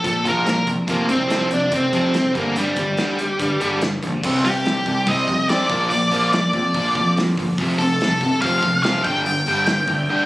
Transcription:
0.04 A#2 F3 A4, kick, closed hi-hat
0.24 A#1 A#2 F3 A#3, kick, closed hi-hat
0.28 A#4
0.46 A#2 F3 A#4, snare, closed hi-hat
0.67 C2 A#2 F3, kick, closed hi-hat
0.87 F1 F2 C3 F3 A#3, kick, closed hi-hat
1.09 C2 F2 C3 C4, kick, closed hi-hat
1.28 F2 C3 F3, snare, closed hi-hat
1.49 F1 F2 C3, closed hi-hat
1.54 D4
1.71 F1 F2 C3 C4, kick, closed hi-hat
1.92 F2 C3 F3, kick, closed hi-hat
2.14 F2 C3, snare, closed hi-hat
2.34 G1 G2 D3 G3 A#3, kick, closed hi-hat
2.56 G2 D3 G3, closed hi-hat
2.76 G1 G2 D3, kick, closed hi-hat
2.97 G2 D3 G3, snare, closed hi-hat
3.19 G2 D3, closed hi-hat
3.39 G2 D3, kick, closed hi-hat
3.60 G1 G2 D3 G3, closed hi-hat
3.81 G2 D3, snare, closed hi-hat
4.03 A#1 G2 D3, kick, closed hi-hat
4.24 C2 C3 G3 C4, kick, crash
4.45 C3 G3 G4, open hi-hat
4.66 C3 G3, snare, open hi-hat
4.86 C2 C3 G3, kick, open hi-hat
5.06 C2 C3 G3 C4 D#5, kick, open hi-hat
5.28 F2 C3 G3, kick, open hi-hat
5.49 C3 G3 C4 D5, snare, open hi-hat
5.69 A#1 A#2 F3 A#3, kick, open hi-hat
5.90 A#2 F3 D5, open hi-hat
6.10 A#1 A#2 F3 A#3, open hi-hat
6.33 A#2 F3 D5, snare, open hi-hat
6.53 F2 A#2 F3, kick, open hi-hat
6.74 A#1 A#2 F3 A#3, kick, open hi-hat
6.95 F2 A#2 F3, kick, open hi-hat
7.17 A#2 F3, snare, open hi-hat
7.37 G1 A#2 F3, kick, open hi-hat
7.58 F1 F2 C3 F3, kick, open hi-hat
7.79 F2 C3 A4, open hi-hat
8.01 F2 C3, snare, open hi-hat
8.21 F1 F2 C3, kick, open hi-hat
8.41 F1 F2 C3 F3 F5, kick, open hi-hat
8.63 F1 F2 C3, kick, open hi-hat
8.83 F2 C3 F3 F5, snare, open hi-hat
9.04 G1 G2 D3 G3 G5, kick, open hi-hat
9.26 G2 D3, open hi-hat
9.46 G1 G2 D3 G3, open hi-hat
9.66 G2 D3, snare, open hi-hat
9.87 D2 G2 D3, kick, open hi-hat
10.09 G2 D3 G3

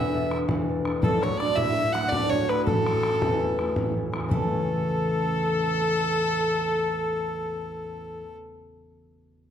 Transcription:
Already playing: E1 E2 A3 B3 D4 E4 G4 A4 E5
0.12 D4 E4 A4
0.18 B3
0.31 D4 E4 A4, bodhran
0.48 E1 E2, bodhran
0.68 D4 E4 A4
0.85 D4 E4 A4, bodhran
1.02 D1 D2 A3 A4, bodhran
1.23 A3 C#4 D4 F#4 C#5, bodhran
1.38 A3 D4 D5, bodhran
1.42 D4 F#4
1.55 A2 E4 E5, bodhran
1.78 A3 D4 F#4
1.92 A3 D4 F#4 F#5, bodhran
2.09 D1 D2 D4 D5, bodhran
2.30 A3 C#4 D4 C#5, bodhran
2.34 F#4
2.48 A3 B3 D4 F#4 B4, bodhran
2.65 A1 A2 A3 A4, bodhran
2.86 A3 C#4 E4, bodhran
3.03 A3 C#4 E4, bodhran
3.22 E2, bodhran
3.43 A3 C#4 E4
3.59 A3 C#4 E4, bodhran
3.76 A1 A2, bodhran
3.96 A3 C#4 E4, bodhran
4.12 A1 A3 C#4 E4, bodhran
4.20 E2
4.28 C#3 A3 A4, bodhran
4.36 E3
4.44 A3
4.53 C#4

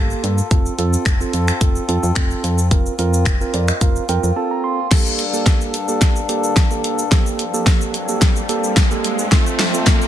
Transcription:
Already playing: G1 A#3 F4 G4 A4
0.10 shaker
0.24 G2, closed hi-hat, shaker
0.38 shaker
0.51 F1 C4 F4 A4, kick, closed hi-hat, shaker
0.66 shaker
0.78 F2 C4 F4 A4, closed hi-hat, shaker
0.93 shaker
1.06 F1, finger snap, kick, clap, closed hi-hat, shaker
1.20 C4 F4 A4, shaker
1.33 F2, closed hi-hat, shaker
1.48 finger snap, shaker
1.61 F1 C4 F4 A4, kick, closed hi-hat, shaker
1.76 shaker
1.88 F2 C4 F4 A4, closed hi-hat, shaker
2.03 F2, shaker
2.16 F1 C4 F4 A4, finger snap, kick, clap, closed hi-hat, shaker
2.31 shaker
2.44 F2, closed hi-hat, shaker
2.58 shaker
2.71 F1 A#3 C4 F4 A#4, kick, closed hi-hat, shaker
2.86 shaker
2.99 F2 C4 F4 A#4, closed hi-hat, shaker
3.14 shaker
3.26 F1, finger snap, kick, clap, closed hi-hat, shaker
3.41 C4 F4 A#4, shaker
3.54 F2 D5, closed hi-hat, shaker
3.68 D#5, finger snap, shaker
3.81 F1 C4 F4 A#4 F5, kick, closed hi-hat, shaker
3.96 shaker
4.09 F2 C4 F4 A#4 G5, closed hi-hat, shaker
4.23 F2, shaker
4.36 C4 F4 A4 A5
4.51 A#5
4.64 C6
4.91 G2 G3 A#3 D4 G4 A4, kick, snare, closed hi-hat, crash, riser, shaker
5.06 shaker
5.19 closed hi-hat, shaker
5.33 A#3 G4 A4, shaker
5.46 kick, snare, closed hi-hat, shaker
5.61 shaker
5.74 closed hi-hat, shaker
5.88 A#3 G4 A4, shaker
6.01 kick, snare, closed hi-hat, shaker
6.16 shaker
6.29 A#3 G4 A4, closed hi-hat, shaker
6.44 shaker
6.56 kick, snare, closed hi-hat, shaker
6.71 A#3 G4 A4, shaker
6.84 closed hi-hat, shaker
6.99 shaker
7.11 A#3 C4 G4 A4, kick, snare, closed hi-hat, shaker
7.26 shaker
7.39 closed hi-hat, shaker
7.53 A#3 G4 A4, shaker
7.66 kick, snare, closed hi-hat, shaker
7.81 shaker
7.94 closed hi-hat, shaker
8.09 A#3 G4 A4, shaker
8.22 kick, snare, closed hi-hat, shaker
8.36 shaker
8.49 A#3 G4 A4, closed hi-hat, shaker
8.64 shaker
8.77 kick, snare, closed hi-hat, shaker
8.91 A#3 G4 A4, shaker
9.04 closed hi-hat, shaker
9.19 shaker
9.32 F2 F3 A3 C4 F4 A4 C5, kick, snare, closed hi-hat, shaker
9.47 shaker
9.59 snare, open hi-hat, shaker
9.74 C4 F4 A4, shaker
9.87 kick, snare, clap, closed hi-hat, shaker
10.02 shaker

